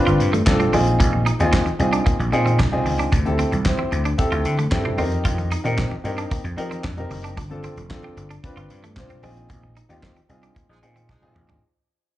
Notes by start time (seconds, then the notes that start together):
Already playing: C4 D4 F4 B4
0.07 G1 F4, closed hi-hat, muted conga
0.20 G2, muted clean electric guitar stroke, closed hi-hat
0.33 A3, closed hi-hat, high conga
0.47 C2 C4 D4 F4 A4, muted clean electric guitar stroke, kick, snare, clap
0.60 C4, closed hi-hat, muted conga, low conga
0.73 A#1 C4 D#4 F4 G#4, open hi-hat, high conga
0.87 closed hi-hat
1.00 A#1 A#3, kick, closed hi-hat, muted conga, low conga
1.13 muted clean electric guitar stroke, muted conga, high conga
1.26 D#4, closed hi-hat
1.39 D#2 C4 D#4 F4 G#4, closed hi-hat, high conga
1.53 C4, kick, snare, clap
1.66 muted clean electric guitar stroke, closed hi-hat, muted conga, high conga
1.79 C2 C4 D#4 F4 G#4, closed hi-hat
1.93 D4, closed hi-hat
2.06 A#3, kick, closed hi-hat
2.19 A#1, closed hi-hat, muted conga
2.32 A#2 C4 D#4 F4 G#4, muted clean electric guitar stroke, closed hi-hat
2.46 C4, closed hi-hat, high conga
2.59 C2 D4, kick, snare, clap
2.72 C4 D#4 F4 G#4, muted conga, low conga
2.86 C#2, muted clean electric guitar stroke, open hi-hat, high conga
2.99 D4, closed hi-hat
3.12 D2 D4, kick, closed hi-hat, low conga
3.25 C4 E4 G4 A4, closed hi-hat, muted conga, high conga
3.39 C4, closed hi-hat
3.52 C2, muted clean electric guitar stroke, closed hi-hat, high conga
3.65 C4 E4 G4 C5, kick, snare, clap
3.78 C4, muted conga, high conga
3.92 D2, muted clean electric guitar stroke, closed hi-hat
4.05 D4, closed hi-hat
4.18 C4 E4 G4 A4, kick, closed hi-hat, muted conga
4.32 D2 F4, closed hi-hat, muted conga
4.45 D3, muted clean electric guitar stroke, closed hi-hat
4.58 A3, closed hi-hat, high conga
4.71 G2 C4 E4 G4 A4, muted clean electric guitar stroke, kick, snare, clap
4.85 C4, muted conga, low conga
4.97 F2 C4 D#4 G4 A#4, open hi-hat, high conga
5.12 closed hi-hat
5.25 F2 F4, kick, closed hi-hat, muted conga, low conga
5.38 muted clean electric guitar stroke, closed hi-hat, high conga
5.51 D#4, closed hi-hat
5.64 A#2 C4 D#4 G4 A#4, closed hi-hat, high conga
5.78 C4, kick, snare, clap, muted conga
5.91 muted clean electric guitar stroke, muted conga, high conga
6.04 G2 C4 D#4 G4 A#4, closed hi-hat
6.18 D4, closed hi-hat
6.31 A#3, kick, closed hi-hat
6.44 F2, closed hi-hat
6.57 F3 C4 D#4 G4 A#4, muted clean electric guitar stroke, closed hi-hat
6.70 C4, closed hi-hat, high conga
6.84 F2 D4, kick, snare, clap, muted conga
6.97 C4 D#4 G4 A#4, closed hi-hat, low conga
7.11 F#1, muted clean electric guitar stroke, open hi-hat, high conga
7.24 D4, closed hi-hat
7.37 G1 D4, kick, closed hi-hat, low conga
7.50 C4 D4 F4 A4, closed hi-hat, muted conga, high conga
7.64 C4, closed hi-hat
7.76 F1, muted clean electric guitar stroke, closed hi-hat, high conga
7.90 C4 D4 F4 A4, kick, snare, clap, muted conga
8.03 C4, muted conga, high conga
8.17 G1, muted clean electric guitar stroke, closed hi-hat
8.30 D4, closed hi-hat
8.43 C4 D4 F4 B4, kick, closed hi-hat, muted conga
8.57 G1 F4, closed hi-hat
8.70 G2, muted clean electric guitar stroke, closed hi-hat
8.83 A3, closed hi-hat, high conga
8.97 C2 C4 D4 F4 C5, muted clean electric guitar stroke, kick, snare, clap
9.10 C4, closed hi-hat, low conga
9.22 A#1 C4 D#4 F4 G#4, open hi-hat, high conga
9.37 closed hi-hat
9.49 A#1 A#3, kick, closed hi-hat, muted conga, low conga
9.63 muted clean electric guitar stroke, muted conga, high conga
9.77 D#4, closed hi-hat
9.89 D#2 C4 D#4 F4 G4, closed hi-hat, high conga
10.03 C4, kick, snare, clap
10.16 muted clean electric guitar stroke, closed hi-hat, high conga
10.29 C2 C4 D#4 F4 G#4, closed hi-hat
10.43 D4, closed hi-hat
10.56 A#3, kick, closed hi-hat, muted conga
10.69 A#1 F3 G#3 D#4 G#4
10.82 A#2 C4 D#4 F4 G#4, muted clean electric guitar stroke, closed hi-hat
10.96 C4, closed hi-hat, high conga
11.09 C2 F3 G#3 D4 D#4 G#4, kick, snare
11.22 C4 D#4 F4 G#4, high tom, muted conga, low conga
11.36 A1, muted clean electric guitar stroke, mid tom, high conga
11.49 D4, floor tom